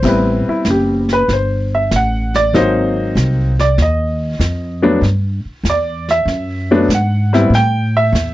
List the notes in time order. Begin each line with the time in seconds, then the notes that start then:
0.03 A1 G3 B3 C4 E4, brush sweep, kick, snare, crash
0.08 B4
0.47 E4, muted upright bass stroke
0.65 F#1, snare, hi-hat pedal
0.70 G4
1.09 snare
1.13 B4
1.28 G1, brush sweep, snare
1.33 C5
1.75 E5
1.91 A1, snare, hi-hat pedal
1.96 F#5
2.34 D5, snare
2.53 G#1 F#3 A#3 C4 D#4 C5, brush sweep, snare
3.15 C2, snare, hi-hat pedal
3.59 D5, snare
3.78 D#2, brush sweep, snare
3.82 D#5
4.39 F2, snare, hi-hat pedal
4.82 F#3 A3 B3 D4
5.02 G2, brush sweep, snare
5.45 muted upright bass stroke
5.63 E2, snare, hi-hat pedal
5.70 D5
6.08 E5, snare
6.25 F#2, brush sweep, snare
6.71 F#3 A3 B3 D4
6.88 G#2, snare, hi-hat pedal
6.94 F#5
7.33 G3 B3 C4 E4, snare
7.50 A2, brush sweep, snare
7.55 G5
7.97 E5
8.12 E2, snare, hi-hat pedal